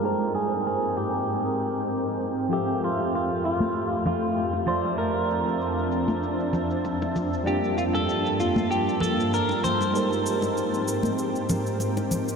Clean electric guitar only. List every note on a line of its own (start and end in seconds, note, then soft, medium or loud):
0.05 0.34 A#4 loud
0.35 0.66 G#4 medium
0.67 0.97 G#4 medium
0.97 2.17 G4 medium
2.53 2.84 G4 medium
2.84 3.14 F4 medium
3.15 3.44 F4 medium
3.45 4.05 F4 medium
4.06 4.67 F4 medium
4.68 4.98 C5 medium
4.98 6.80 A#4 medium
7.47 7.77 G4 medium
7.78 7.83 F4 medium
7.95 8.41 A4 medium
8.40 8.70 F4 medium
8.71 9.02 G4 medium
9.01 9.33 A4 medium
9.34 9.64 A#4 medium
9.64 11.76 C5 medium